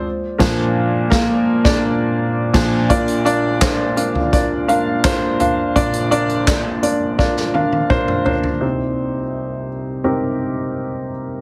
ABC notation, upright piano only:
X:1
M:4/4
L:1/16
Q:1/4=84
K:Bbmix
V:1 name="Upright piano"
z2 [B,,F,B,DB]2 z2 [B,B]2 z [Dd]2 z3 [B,,F,D]2 | [DFBd] z [DFBd] z [DFBc] z [DFBf] z [DFBd] z [DFBf] z [DFBc] z [DFBf] z | [DFBd] z [DFBd] z [DFBd] z [DFBd] z [DFBd] z [DFBf] z [DFBc] z [DFBc] z | [CEGc]6 z2 [CEGB]6 z2 |]
V:2 name="Upright piano" clef=bass
z16 | [B,,,B,,]16 | [B,,,B,,]16 | [C,,C,]16 |]